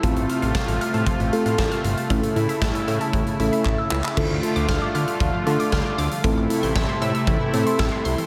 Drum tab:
CC |----------------|----------------|x---------------|----------------|
HH |xxxxxxxxxxxxxxxx|xxxxxxxxxxxx----|--xx--xxx-xx--xx|x-xx--xxx-xx--xx|
CP |----------------|------------x-xx|----------------|----------------|
SD |----o-------o---|----o-----------|----o-------o---|----o-------o---|
BD |o---o---o---o---|o---o---o---o---|o---o---o---o---|o---o---o---o---|